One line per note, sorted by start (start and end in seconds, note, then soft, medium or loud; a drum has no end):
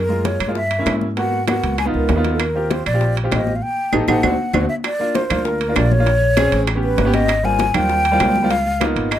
0.00 0.35 F#2 medium
0.00 0.27 A#4 medium
0.09 0.36 G#3 medium
0.09 0.36 A#3 medium
0.09 0.37 F4 medium
0.09 high conga soft
0.25 0.55 C#5 medium
0.25 high bongo medium
0.25 high conga medium
0.25 high timbale medium
0.25 low timbale soft
0.40 0.83 G2 medium
0.40 high conga soft
0.40 high timbale medium
0.40 claves medium
0.47 0.55 G#3 medium
0.47 0.56 A#3 medium
0.47 0.56 F4 medium
0.55 0.93 E5 medium
0.55 high bongo medium
0.55 high conga soft
0.71 high conga soft
0.71 high timbale medium
0.79 1.06 A#3 medium
0.79 1.06 C#4 medium
0.79 1.06 E4 medium
0.86 1.57 G#2 medium
0.86 high bongo medium
0.86 low bongo medium
0.86 high conga medium
0.86 high timbale medium
0.86 low timbale medium
0.86 claves medium
1.01 high conga medium
1.17 1.38 A#3 medium
1.17 1.39 B3 medium
1.17 1.39 F#4 medium
1.17 1.46 F#5 medium
1.17 high bongo medium
1.17 high conga soft
1.17 high timbale medium
1.32 high bongo soft
1.32 high conga soft
1.48 1.74 A#3 medium
1.48 1.75 B3 medium
1.48 1.75 F#4 medium
1.48 1.77 F#5 medium
1.48 high bongo medium
1.48 high conga medium
1.48 high timbale medium
1.48 low timbale medium
1.48 claves medium
1.63 1.92 C#2 medium
1.63 high conga soft
1.63 high timbale medium
1.78 1.85 G#5 medium
1.78 high bongo medium
1.78 high conga soft
1.78 high timbale medium
1.78 claves medium
1.85 2.07 B3 medium
1.85 2.08 D#4 medium
1.85 2.08 F4 medium
1.94 2.08 C#2 medium
1.94 2.31 A#4 medium
1.94 high bongo soft
1.94 high conga soft
2.09 2.80 D#2 medium
2.09 high bongo medium
2.09 low bongo medium
2.09 high conga medium
2.09 high timbale medium
2.09 low timbale medium
2.16 2.39 B3 medium
2.16 2.40 D#4 medium
2.16 2.40 F4 medium
2.24 high bongo soft
2.24 high conga medium
2.24 high timbale medium
2.33 2.41 A4 medium
2.40 2.73 A#4 medium
2.40 high bongo medium
2.40 high conga soft
2.40 high timbale medium
2.40 claves medium
2.55 2.82 C4 medium
2.55 2.82 F4 medium
2.55 2.83 G4 medium
2.55 high conga soft
2.70 2.86 C5 medium
2.70 high bongo medium
2.70 high conga medium
2.70 high timbale medium
2.70 low timbale medium
2.86 3.29 A#1 medium
2.86 3.15 D5 medium
2.86 high conga soft
2.86 high timbale medium
2.86 claves medium
2.93 3.15 C4 medium
2.93 3.15 F4 medium
2.93 3.15 G4 medium
3.01 high bongo medium
3.01 high conga soft
3.17 high conga soft
3.17 high timbale medium
3.24 3.51 C4 medium
3.24 3.51 F4 medium
3.24 3.51 G4 medium
3.32 3.60 A1 medium
3.32 3.57 D#5 medium
3.32 high bongo medium
3.32 low bongo medium
3.32 high conga medium
3.32 high timbale medium
3.32 low timbale medium
3.32 claves medium
3.47 high conga medium
3.56 3.64 F5 medium
3.62 3.93 G5 medium
3.93 4.04 A1 medium
3.93 4.03 D#4 medium
3.93 4.03 G4 medium
3.93 4.03 A4 medium
3.93 high bongo medium
3.93 high conga medium
3.93 high timbale medium
3.93 claves medium
4.08 4.19 A1 medium
4.08 4.18 D#4 medium
4.08 4.18 G4 medium
4.08 4.18 A4 medium
4.08 4.66 F#5 medium
4.08 high bongo medium
4.08 high conga medium
4.08 high timbale medium
4.08 claves medium
4.23 4.35 D2 medium
4.23 4.33 C4 medium
4.23 4.33 D4 medium
4.23 4.33 F#4 medium
4.23 high bongo medium
4.23 high conga medium
4.23 high timbale medium
4.23 claves medium
4.53 4.65 D2 medium
4.53 4.64 C4 medium
4.53 4.64 D4 medium
4.53 4.64 F#4 medium
4.53 high bongo medium
4.53 high conga medium
4.53 high timbale medium
4.53 claves medium
4.69 4.75 E5 medium
4.84 5.17 D5 medium
4.84 high bongo medium
4.84 high conga soft
4.84 high timbale medium
4.84 claves medium
4.99 5.21 A#3 medium
4.99 5.21 D4 medium
4.99 5.22 F4 medium
4.99 high conga soft
5.15 5.47 C5 medium
5.15 high bongo medium
5.15 high conga medium
5.15 high timbale medium
5.15 low timbale medium
5.30 5.73 D2 medium
5.30 5.57 A#3 medium
5.30 5.57 D4 medium
5.30 5.58 F4 medium
5.30 high conga soft
5.30 low conga medium
5.30 high timbale medium
5.30 claves medium
5.45 5.78 A#4 medium
5.45 high bongo medium
5.45 high conga soft
5.61 high conga soft
5.61 high timbale medium
5.68 5.90 A#3 medium
5.68 5.90 D4 medium
5.68 5.90 F4 medium
5.76 6.47 A#1 medium
5.76 5.93 D5 medium
5.76 high bongo medium
5.76 low bongo medium
5.76 high conga medium
5.76 high timbale medium
5.76 low timbale medium
5.76 claves medium
5.92 6.61 C#5 loud
5.92 high conga medium
5.99 6.06 A#3 medium
5.99 6.07 D4 medium
5.99 6.07 F4 medium
6.06 high bongo medium
6.06 high conga soft
6.06 high timbale medium
6.22 high bongo soft
6.22 high conga soft
6.37 6.64 C4 medium
6.37 6.64 C#4 medium
6.37 6.64 G#4 loud
6.37 high bongo medium
6.37 high conga medium
6.37 high timbale medium
6.37 low timbale medium
6.37 claves medium
6.52 6.95 A1 medium
6.52 high conga soft
6.52 high timbale medium
6.67 high bongo medium
6.67 high conga soft
6.67 high timbale medium
6.67 claves medium
6.75 6.97 B3 medium
6.75 6.97 C#4 medium
6.75 6.97 G4 medium
6.83 7.16 B4 loud
6.83 high bongo soft
6.83 high conga soft
6.98 7.69 G#1 medium
6.98 high bongo medium
6.98 low bongo medium
6.98 high conga medium
6.98 high timbale medium
6.98 low timbale medium
7.05 7.28 B3 medium
7.05 7.29 C#4 medium
7.05 7.29 G4 medium
7.13 7.46 D#5 loud
7.13 high bongo soft
7.13 high conga medium
7.13 high timbale medium
7.28 high bongo medium
7.28 high conga soft
7.28 high timbale medium
7.28 claves medium
7.43 7.65 G3 medium
7.43 7.65 A#3 medium
7.43 7.66 C4 medium
7.43 7.66 F4 medium
7.43 7.76 G#5 loud
7.43 high conga soft
7.59 high bongo medium
7.59 high conga loud
7.59 high timbale medium
7.59 low timbale medium
7.74 8.17 D#2 medium
7.74 8.01 G3 medium
7.74 8.01 A#3 medium
7.74 8.02 C4 medium
7.74 8.02 F4 medium
7.74 8.52 G5 loud
7.74 high conga soft
7.74 low conga medium
7.74 high timbale medium
7.74 claves medium
7.90 high bongo medium
7.90 high conga soft
8.05 high conga soft
8.05 high timbale medium
8.12 8.33 G3 medium
8.12 8.34 A#3 medium
8.12 8.34 C4 medium
8.12 8.34 F4 medium
8.20 8.91 C#2 medium
8.20 high bongo medium
8.20 low bongo medium
8.20 high conga medium
8.20 high timbale medium
8.20 low timbale medium
8.20 claves medium
8.36 high conga medium
8.42 8.50 G3 medium
8.42 8.51 A#3 medium
8.42 8.51 C4 medium
8.42 8.51 F4 medium
8.51 8.85 F5 loud
8.51 high bongo medium
8.51 high conga soft
8.51 high timbale medium
8.66 high bongo soft
8.66 high conga soft
8.80 9.07 A#3 medium
8.80 9.08 B3 medium
8.80 9.08 D#4 medium
8.80 9.08 F4 medium
8.80 high bongo medium
8.80 high conga medium
8.80 high timbale medium
8.80 low timbale medium
8.80 claves medium
8.96 9.19 G#1 medium
8.96 high conga soft
8.96 high timbale medium
9.11 9.19 D#5 medium
9.11 high bongo medium
9.11 high conga soft
9.11 high timbale medium
9.11 claves medium